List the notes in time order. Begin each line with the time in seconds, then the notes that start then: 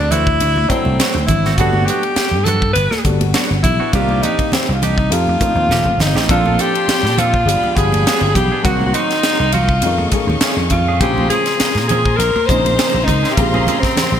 Already playing: D2 F#3 A3 C4 D4 E4
0.11 E3 A3 C4 E4 F#4, hi-hat pedal, ride, low conga
0.27 muted clean electric guitar stroke, kick
0.40 D2, muted clean electric guitar stroke, hi-hat pedal, ride
0.56 muted clean electric guitar stroke, high conga
0.69 F#3 A3 C4 D4 E4, muted slap bass stroke, muted clean electric guitar stroke, kick, hi-hat pedal, ride
0.85 C2, high conga
0.99 E3 A3 C4 F#4, muted slap bass stroke, snare, hi-hat pedal, ride
1.15 D2, muted clean electric guitar stroke
1.26 G#1 E4, kick, hi-hat pedal, ride, low conga
1.31 muted clean electric guitar stroke
1.45 A3 C4 F#4, snare
1.56 G1 F#3 G3 A3 B3 D4 F#4 F#5, kick, hi-hat pedal, ride
1.60 D4 F#4
1.73 F#3 B3 D4 F#4, high conga
1.86 F#3 B3 D4 G4, hi-hat pedal, ride
1.90 F#4
2.03 ride
2.16 muted slap bass stroke, snare, hi-hat pedal, ride
2.31 G2, muted clean electric guitar stroke
2.44 F#3 B3 D4 F#4 A4, hi-hat pedal, ride, low conga
2.62 muted clean electric guitar stroke, kick
2.73 G1 B4, muted clean electric guitar stroke, hi-hat pedal, ride
2.91 muted clean electric guitar stroke, snare, high conga
3.04 G1 G3 A3 B3 D4 F#4, muted clean electric guitar stroke, kick, hi-hat pedal, ride
3.21 ride, high conga
3.34 F#3 B3 D4 F#4, snare, hi-hat pedal, ride
3.51 G1, muted clean electric guitar stroke
3.63 B1 E4, muted clean electric guitar stroke, kick, hi-hat pedal, ride, low conga
3.80 B3 D4 F#4
3.93 C2 D#3 A#3 C4 D4 F4 G4, kick, hi-hat pedal, ride
4.09 D#3 A#3 D4 G4, high conga
4.23 D#3 A#3 D4 D#4 G4, hi-hat pedal, ride, high conga, low conga
4.39 muted clean electric guitar stroke, kick, ride
4.52 C4, snare, hi-hat pedal, ride, low conga
4.69 C2, muted clean electric guitar stroke
4.75 F4
4.82 D#3 A#3 D4 D#4 G4, hi-hat pedal, ride, low conga
4.98 muted clean electric guitar stroke, kick
5.10 F2 F3 A3 C4 D#4 F4 G4, muted clean electric guitar stroke, hi-hat pedal, ride
5.27 muted clean electric guitar stroke, high conga
5.40 F3 A3 C4 D#4 F4, muted clean electric guitar stroke, kick, hi-hat pedal, ride, high conga
5.55 D#2, high conga
5.69 D#1 D#3 A3 C4 G4, snare, hi-hat pedal
5.85 F1, muted clean electric guitar stroke
5.98 G1 D#4, muted clean electric guitar stroke, snare, hi-hat pedal, low conga
6.15 A1 A3 C4 G4, snare
6.29 A#1 F3 A#3 C4 D4 F4 A4 D5 A5 C6, kick, hi-hat pedal, ride
6.46 F3 C4 D4 A4, high conga
6.59 F3 C4 D4 G4 A4, hi-hat pedal, ride
6.75 muted clean electric guitar stroke, ride
6.88 muted slap bass stroke, snare, hi-hat pedal, ride
7.03 A#2, muted clean electric guitar stroke, snare
7.18 F3 C4 D4 F4 A4, hi-hat pedal, ride, low conga
7.34 muted clean electric guitar stroke, kick
7.45 G1 F3 G#3 B3 D4 G4 F5 G5 B5, muted clean electric guitar stroke, hi-hat pedal, ride
7.63 muted clean electric guitar stroke, high conga
7.75 G1 F3 G3 G#3 B3 D4 G#4, muted clean electric guitar stroke, kick, hi-hat pedal, ride
7.92 ride, high conga
8.06 F3 B3 D4 G#4, snare, hi-hat pedal, ride
8.21 G1, muted clean electric guitar stroke
8.35 B1 G4, muted clean electric guitar stroke, kick, hi-hat pedal, ride, low conga
8.52 B3 D4 G#4
8.62 C2 D#3 F#3 A#3 C4 D#4 F#4 A#4 D#5 F#5 C6, kick, hi-hat pedal, ride
8.80 F#3 A#3 D#4 F#4, high conga
8.86 F#4
8.94 F#3 A#3 D#4 F#4, hi-hat pedal, ride
9.10 muted clean electric guitar stroke, snare, ride
9.23 snare, hi-hat pedal, ride
9.39 C2, muted clean electric guitar stroke
9.52 F#3 A#3 D#4 F4 F#4, hi-hat pedal, ride, low conga
9.69 muted clean electric guitar stroke, kick
9.81 F2 D#3 G#3 A3 C#4 F4 F5 C#6, muted clean electric guitar stroke, hi-hat pedal, ride
9.98 muted clean electric guitar stroke, high conga
10.11 D#3 G#3 A3 C#4 G#4, muted clean electric guitar stroke, kick, hi-hat pedal, ride
10.27 D#2, high conga
10.41 D#3 A3 C#4 G#4, muted slap bass stroke, snare, hi-hat pedal, ride
10.57 F2, muted clean electric guitar stroke
10.70 F2 F4, muted clean electric guitar stroke, kick, hi-hat pedal, ride, low conga
10.88 A3 C#4 G#4
11.00 A#1 C#3 F3 G#3 A#3 C4 C#4 F4 G4 G#4 A#4 C5 A#5 C6, kick, hi-hat pedal, ride
11.18 F3 C4 C#4 G#4, high conga
11.30 F3 C4 C#4 G#4, hi-hat pedal, ride
11.46 muted clean electric guitar stroke, snare, ride
11.60 muted slap bass stroke, snare, hi-hat pedal, ride
11.75 A#2, muted clean electric guitar stroke, snare
11.88 F3 C4 C#4 G#4, hi-hat pedal, ride, low conga
12.06 muted clean electric guitar stroke, kick
12.17 A#1 A#4, muted clean electric guitar stroke, hi-hat pedal, ride
12.36 muted clean electric guitar stroke, high conga
12.46 A#1 C#3 G#3 A#3 C4 D#4 C5, muted clean electric guitar stroke, kick, hi-hat pedal, ride
12.65 ride, high conga
12.78 F3 C4 C#4 G#4, snare, hi-hat pedal, ride
12.94 A#1, muted clean electric guitar stroke
13.05 C#2 D#4, muted clean electric guitar stroke, kick, hi-hat pedal, ride, low conga
13.23 C4 C#4 G#4, snare
13.31 F4 G4
13.37 A#1 C#3 G#3 A#3 C4 G4, kick, hi-hat pedal, ride
13.54 F3 C4 C#4 G#4, high conga
13.67 F3 C4 C#4 G#4, hi-hat pedal, ride, high conga, low conga
13.80 C4, kick
13.84 muted clean electric guitar stroke, snare, ride
13.97 snare, hi-hat pedal, ride, low conga
14.12 A#1, muted clean electric guitar stroke